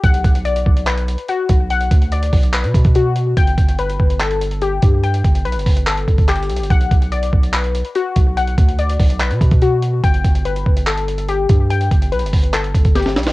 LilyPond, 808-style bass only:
\new Staff \with { instrumentName = "808-style bass" } { \clef bass \time 4/4 \key b \minor \tempo 4 = 144 b,,8 b,,4 b,,4~ b,,16 r8. b,,8~ | b,,8 d,4 b,,8. b,16 b,16 b,4~ b,16 | g,,8 g,,4 g,,2 g,8~ | g,8 g,,8 b,,16 g,,16 g,,4 fis,,16 g,,8. b,,16 g,,16 |
b,,8 b,,4 b,,4~ b,,16 r8. b,,8~ | b,,8 d,4 b,,8. b,16 b,16 b,4~ b,16 | g,,8 g,,4 g,,2 g,8~ | g,8 g,,8 b,,16 g,,16 g,,4 fis,,16 g,,8. b,,16 g,,16 | }